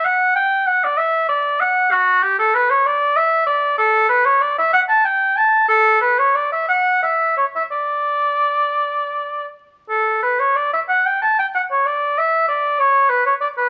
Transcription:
\new Staff \with { instrumentName = "Oboe" } { \time 6/8 \key fis \phrygian \tempo 4. = 63 fis''8 g''8 fis''16 d''16 e''8 d''8 fis''8 | \key d \major fis'8 g'16 a'16 b'16 cis''16 d''8 e''8 d''8 | a'8 b'16 cis''16 d''16 e''16 fis''16 a''16 g''8 a''8 | a'8 b'16 cis''16 d''16 e''16 fis''8 e''8 cis''16 e''16 |
d''2~ d''8 r8 | a'8 b'16 cis''16 d''16 e''16 fis''16 g''16 a''16 g''16 fis''16 cis''16 | d''8 e''8 d''8 cis''8 b'16 cis''16 d''16 b'16 | }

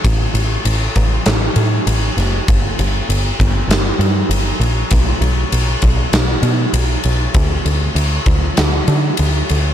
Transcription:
<<
  \new Staff \with { instrumentName = "Picked electric bass" } { \clef bass \time 4/4 \key d \major \tempo 4 = 98 a,,8 a,,8 a,,8 a,,8 a,,8 a,8 a,,8 fis,,8 | g,,8 g,,8 g,,8 g,,8 g,,8 g,8 g,,8 bes,,8 | b,,8 b,,8 b,,8 b,,8 b,,8 b,8 b,,8 b,,8 | d,8 d,8 d,8 d,8 d,8 d8 d,8 d,8 | }
  \new DrumStaff \with { instrumentName = "Drums" } \drummode { \time 4/4 <bd cymr>8 cymr8 cymr8 <bd cymr>8 <cymr sn>8 cymr8 cymr8 <cymr sn>8 | <bd cymr>8 cymr8 cymr8 <bd cymr>8 <cymr sn>8 cymr8 cymr8 cymr8 | <bd cymr>8 cymr8 cymr8 <bd cymr>8 <cymr sn>8 cymr8 cymr8 cymr8 | <bd cymr>8 cymr8 cymr8 <bd cymr>8 <cymr sn>8 cymr8 cymr8 cymr8 | }
>>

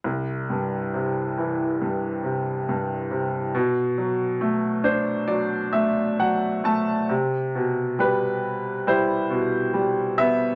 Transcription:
<<
  \new Staff \with { instrumentName = "Grand piano" } { \time 4/4 \key c \lydian \tempo 4 = 68 << { r1 | r4. c''8 d''8 e''8 fis''8 a''8 | r4 b'4 c''4. e''8 | } \\ { r1 | r1 | r2 e'2 | } >> }
  \new Staff \with { instrumentName = "Grand piano" } { \clef bass \time 4/4 \key c \lydian c,8 g,8 c8 e8 g,8 c8 g,8 c8 | b,8 fis8 a8 d'8 fis8 a8 fis8 a8 | c8 b,8 g4 g8 b,8 g8 b8 | }
>>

